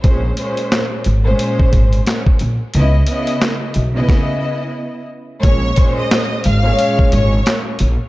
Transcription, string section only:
X:1
M:4/4
L:1/16
Q:"Swing 16ths" 1/4=89
K:Bbm
V:1 name="String section"
[B,,A,Dc]2 [B,,A,Dc]4 z [B,,A,Dc]6 z3 | [D,_C_Fe]2 [D,CFe]4 z [D,CFe]6 z3 | [B,,A,Dd]2 [B,,A,Dc]4 z [B,,A,Dd]6 z3 |]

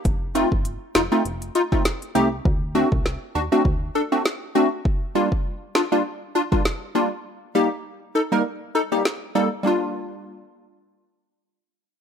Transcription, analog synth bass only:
X:1
M:4/4
L:1/16
Q:"Swing 16ths" 1/4=100
K:Gm
V:1 name="Analog synth bass" clef=bass
F,,,3 G,,,2 z F,,, z F,,,2 z4 C,,2 | D,,3 C,,2 z E,, z D,,2 z6 | z16 | z16 |
z16 |]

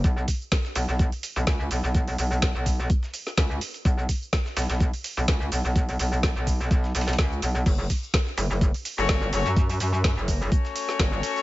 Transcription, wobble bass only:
X:1
M:4/4
L:1/16
Q:"Swing 16ths" 1/4=126
K:F#phr
V:1 name="Wobble bass" clef=bass
B,,,2 z4 B,,, B,,,2 z2 B,,, z2 B,,, B,,,- | B,,,2 B,,,3 B,,,3 z4 C,,2 z2 | B,,,2 z4 B,,, B,,,2 z2 B,,, C,,2 B,,, B,,,- | B,,,2 B,,,3 B,,,3 B,,,2 B,,,2 C,,2 B,,,2 |
F,,,2 z4 F,,, F,,,2 z2 F,,, G,,,2 F,,, F,,- | F,,2 F,,3 F,,,3 z4 G,,,2 z2 |]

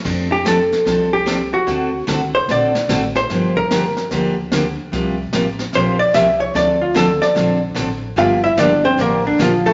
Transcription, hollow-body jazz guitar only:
X:1
M:4/4
L:1/8
Q:"Swing" 1/4=148
K:F
V:1 name="Hollow-body jazz guitar"
z G A3 G2 _G- | _G2 z c d3 c- | c B3 z4 | z4 c d e _d |
d F A d2 z3 | [Ff] [Ee] [Dd] [Cc] [B,B] [D,D] [F,F] [A,A] |]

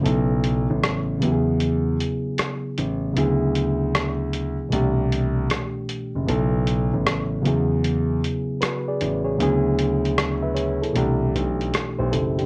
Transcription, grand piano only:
X:1
M:4/4
L:1/16
Q:"Swing 16ths" 1/4=77
K:Bdor
V:1 name="Grand piano" clef=bass
B,,,3 A,,,3 E,,4 z4 A,,,2 | D,,6- D,, z =C,,4 z3 F,,, | B,,,3 A,,,3 E,,4 z4 A,,,2 | D,,6- D,, z =C,,2 B,,,2 z B,,, F,,,2 |]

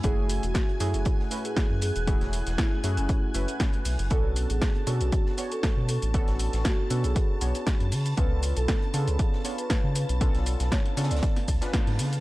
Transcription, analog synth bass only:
X:1
M:4/4
L:1/16
Q:"Swing 16ths" 1/4=118
K:F#m
V:1 name="Analog synth bass" clef=bass
F,,,3 E,,, z2 F,, F,,, z4 z F,,2 E,,,- | E,,, E,,,2 E,,, z2 F,, F,,, z2 F,,, z3 B,,, F,,, | B,,,3 A,,, z2 B,, B,,, z4 z B,,2 A,,,- | A,,, A,,,2 A,,, z2 B,, B,,, z2 B,,, z2 F,, C,2 |
C,,3 B,,, z2 C, C,, z4 z C,2 B,,,- | B,,, B,,,2 B,,, z2 C, C,, z2 C,, z2 G,, C,2 |]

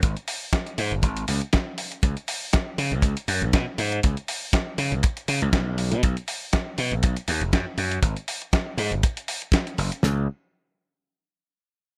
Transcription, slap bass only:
X:1
M:4/4
L:1/16
Q:"Swing 16ths" 1/4=120
K:F#mix
V:1 name="Slap bass" clef=bass
G,,, z4 z G,, G,,, G,,,2 C,, z4 z | C,, z4 z C, C,, C,, z F,, B,,, B,, z G,,2 | C,, z4 z C, C,, z2 C, C,, B,,,3 B,, | B,,, z4 z B,, B,,, B,,, z D,, F,,, F,, z F,,2 |
G,,, z4 z G,, G,,, z6 F,,, z | C,,2 z12 z2 |]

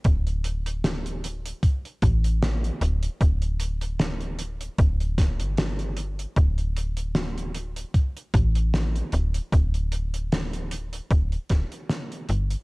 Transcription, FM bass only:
X:1
M:4/4
L:1/16
Q:"Swing 16ths" 1/4=76
K:C
V:1 name="FM bass" clef=bass
D,,,6- D,,, z3 A,,,3 z D,,, z | D,,,6- D,,, z D,,,3 G,,,4 z | D,,,6- D,,, z3 A,,,3 z D,,, z | D,,,6- D,,, z D,,, z D,,, z3 G,,, z |]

